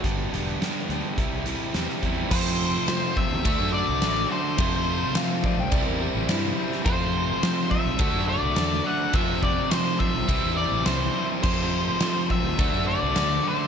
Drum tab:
CC |----------------|x---------------|----------------|----------------|
RD |----------------|----b---b---b---|b---b---b---b---|b---b---b---b---|
HH |x-x-x-x-x-x-x-x-|----------------|----------------|----------------|
SD |----o-------oo--|----o-------o---|----o-------o--o|----o-------o---|
BD |o-------o-----o-|o-----o-o-------|o-----o-o-------|o-----o-o-------|

CC |----------------|x---------------|
RD |b---b---b---b---|----b---b---b---|
HH |----------------|----------------|
SD |----o-------o---|----o-------o---|
BD |o-o---o-o-------|o-----o-o-------|